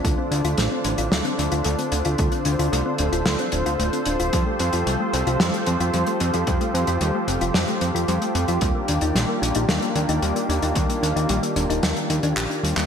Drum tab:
HH |x-xxx-xxxxxxxxxx|xxxxx-xxxxxxxxxx|x-xxx-xxxxxxxxxx|xxxxx-xxxxxxxxxx|
CP |----------------|----------------|----------------|----------------|
SD |----o---o-------|--------o-------|--------o-------|--------o-------|
BD |o---------------|o---------------|o---------------|o---------------|

HH |x-xxx-xxxxxxxxxx|xxxxxxxxxxxxxxxx|
CP |----------------|------------x--x|
SD |----o---o-------|--------o-------|
BD |o---------------|o---------------|